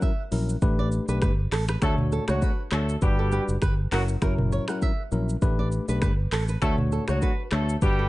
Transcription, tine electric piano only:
0.00 0.10 F#3 medium
0.00 0.10 C#4 medium
0.00 0.10 E4 medium
0.00 0.11 A#4 medium
0.32 0.55 F#3 medium
0.32 0.55 C#4 medium
0.32 0.55 E4 medium
0.32 0.56 A#4 medium
0.62 1.05 A3 medium
0.62 1.05 D4 medium
0.62 1.05 G4 medium
0.62 1.05 B4 loud
1.08 1.30 A3 medium
1.08 1.30 D4 medium
1.08 1.31 G4 medium
1.08 1.31 B4 medium
1.82 2.25 A3 loud
1.82 2.25 D4 medium
1.82 2.25 F#4 medium
1.82 2.25 C#5 loud
2.28 2.50 A3 medium
2.28 2.50 D4 medium
2.28 2.51 F#4 medium
2.28 2.51 C#5 medium
2.72 2.95 A3 medium
2.72 2.95 D4 medium
2.72 2.95 F#4 medium
2.72 2.96 C#5 medium
3.02 3.30 G3 medium
3.02 3.30 D4 medium
3.02 3.30 F#4 medium
3.02 3.30 B4 loud
3.32 3.55 G3 medium
3.32 3.55 D4 medium
3.32 3.55 F#4 medium
3.32 3.56 B4 medium
3.92 4.15 F#3 medium
3.92 4.15 C#4 medium
3.92 4.15 E4 medium
3.92 4.16 A#4 medium
4.22 4.65 F#3 loud
4.22 4.65 C#4 medium
4.22 4.65 E4 medium
4.22 4.65 A#4 loud
4.68 4.90 F#3 medium
4.68 4.90 C#4 medium
4.68 4.91 E4 medium
4.68 4.91 A#4 medium
5.12 5.35 F#3 medium
5.12 5.35 C#4 medium
5.12 5.35 E4 medium
5.12 5.36 A#4 medium
5.42 5.85 A3 medium
5.42 5.85 D4 medium
5.42 5.85 G4 medium
5.42 5.85 B4 loud
5.88 6.10 A3 medium
5.88 6.10 D4 medium
5.88 6.10 G4 medium
5.88 6.11 B4 medium
6.62 7.05 A3 loud
6.62 7.05 D4 medium
6.62 7.05 F#4 medium
6.62 7.05 C#5 loud
7.08 7.30 A3 medium
7.08 7.30 D4 medium
7.08 7.30 F#4 medium
7.08 7.31 C#5 medium
7.52 7.75 A3 medium
7.52 7.75 D4 medium
7.52 7.75 F#4 medium
7.52 7.76 C#5 medium
7.82 8.09 G3 medium
7.82 8.09 D4 medium
7.82 8.09 F#4 medium
7.82 8.09 B4 loud

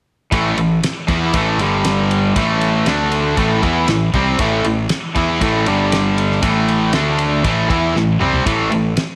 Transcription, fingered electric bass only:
0.32 0.56 A1 medium
0.57 0.81 A1 medium
1.09 1.33 E2 medium
1.34 1.57 A1 medium
1.58 2.31 G1 loud
2.36 2.83 A1 medium
2.86 3.34 D2 medium
3.37 3.61 A1 medium
3.63 3.87 E2 medium
3.88 4.12 A1 medium
4.14 4.38 C2 medium
4.39 4.63 A1 medium
4.65 4.89 A1 medium
5.16 5.40 E2 medium
5.40 5.65 A1 medium
5.68 6.40 G1 loud
6.43 6.90 A1 medium
6.93 7.41 D2 medium
7.44 7.68 A1 medium
7.70 7.94 E2 medium
7.96 8.20 A1 medium
8.22 8.45 C2 medium
8.46 8.70 A1 medium
8.73 8.96 A1 medium

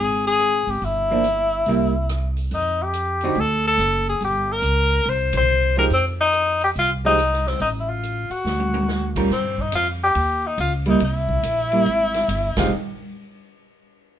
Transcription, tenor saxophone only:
0.00 0.24 G#4 medium
0.27 0.72 G#4 loud
0.70 0.86 G4 medium
0.85 2.38 E4 loud
2.54 2.84 D#4 medium
2.82 3.42 G4 medium
3.40 3.66 A4 medium
3.67 4.05 A4 loud
4.09 4.22 G#4 medium
4.24 4.54 G4 loud
4.52 5.10 A#4 loud
5.09 5.35 C5 loud
5.37 5.75 C5 loud
5.78 5.85 A#4 medium
5.93 6.05 C4 medium
6.20 6.59 D#4 loud
6.64 6.70 G4 loud
6.78 6.90 F4 medium
7.06 7.49 D#4 loud
7.48 7.61 C4 medium
7.61 7.70 D#4 medium
7.80 7.90 E4 medium
7.89 8.33 F4 medium
8.31 9.16 F#4 medium
9.32 9.62 C4 medium
9.61 9.74 D#4 medium
9.75 9.87 F4 loud
10.03 10.48 G4 loud
10.47 10.60 D#4 medium
10.60 10.72 F4 medium
10.89 11.02 D#4 medium
11.04 12.54 E4 loud
12.58 12.71 F4 medium

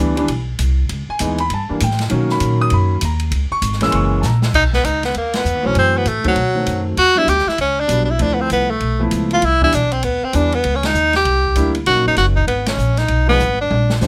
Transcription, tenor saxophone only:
4.55 4.63 D#4 loud
4.75 4.86 B3 medium
4.85 5.03 D#4 medium
5.05 5.15 B3 medium
5.18 5.39 A#3 medium
5.37 5.68 B3 medium
5.66 5.77 C#4 medium
5.79 5.99 C4 loud
5.97 6.10 B3 medium
6.08 6.26 A3 medium
6.28 6.83 F#3 medium
6.98 7.20 F#4 loud
7.18 7.31 E4 loud
7.29 7.50 G4 loud
7.48 7.59 E4 medium
7.61 7.82 C#4 medium
7.80 8.04 D4 loud
8.05 8.12 D4 medium
8.10 8.23 E4 medium
8.22 8.36 D4 loud
8.34 8.42 B3 medium
8.41 8.51 C4 medium
8.53 8.72 B3 medium
8.71 9.03 A3 medium
9.34 9.46 F4 medium
9.45 9.62 E4 loud
9.64 9.76 E4 loud
9.74 9.94 D4 medium
9.92 10.06 C4 medium
10.04 10.26 B3 medium
10.24 10.38 C4 medium
10.36 10.56 D4 medium
10.55 10.77 B3 medium
10.76 10.88 C#4 medium
10.86 11.15 D#4 loud
11.16 11.72 G4 medium
11.87 12.04 F#4 loud
12.08 12.17 D#4 medium
12.18 12.26 F#4 medium
12.36 12.47 D#4 medium
12.47 12.69 B3 medium
12.68 13.00 C#4 medium
12.99 13.29 D#4 loud
13.29 13.57 B3 medium
13.61 13.99 D4 medium

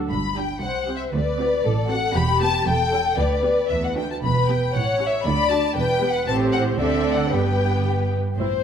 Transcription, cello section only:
0.10 0.51 G2 soft
0.62 1.02 C2 soft
1.13 1.54 D2 medium
1.64 2.04 A2 soft
2.14 2.55 E2 medium
2.65 3.07 E2 medium
3.18 3.60 D2 medium
3.71 3.95 E2 medium
3.98 4.23 D2 soft
4.24 4.64 E2 medium
4.75 5.15 A2 soft
5.26 5.66 D2 medium
5.76 6.16 E2 medium
6.27 6.75 A2 medium
6.78 7.32 D3 soft
7.32 8.18 G2 soft
8.38 8.63 A2 soft

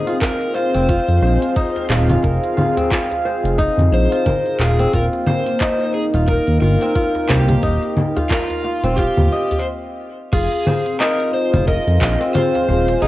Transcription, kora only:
0.00 0.53 C4 medium
0.00 1.16 D#4 medium
0.00 0.39 C5 medium
0.07 0.54 F4 medium
0.21 1.48 A#4 medium
0.55 0.88 F4 medium
0.75 2.55 C4 medium
0.89 2.09 F4 loud
1.22 2.41 C5 medium
1.56 3.18 D#4 medium
2.10 2.56 F4 medium
2.23 3.50 A#4 medium
2.57 2.91 F4 medium
2.77 4.57 C4 medium
2.91 4.11 F4 medium
3.25 4.44 C5 medium
3.58 5.20 D#4 loud
4.12 4.60 F4 medium
4.26 5.53 A#4 medium
4.60 4.93 F4 medium
4.79 6.59 C4 medium
4.93 6.14 F4 medium
5.27 6.46 C5 medium
5.61 7.23 D#4 medium
6.14 6.61 F4 medium
6.28 7.56 A#4 medium
6.62 6.95 F4 medium
6.82 8.62 C4 medium
6.95 8.16 F4 medium
7.29 8.48 C5 medium
7.63 9.25 D#4 medium
8.16 8.64 F4 medium
8.31 9.58 A#4 medium
8.64 8.98 F4 medium
8.84 10.64 C4 medium
8.99 10.32 F4 loud
9.32 10.39 D#5 medium
10.33 11.53 F4 loud
10.67 11.85 C5 medium
11.00 12.62 D#4 medium
11.53 12.01 F4 medium
11.67 12.95 A#4 medium
12.01 12.34 F4 medium
12.21 13.08 C4 medium
12.35 13.08 F4 medium
12.68 13.08 C5 medium
13.02 13.08 D#4 loud

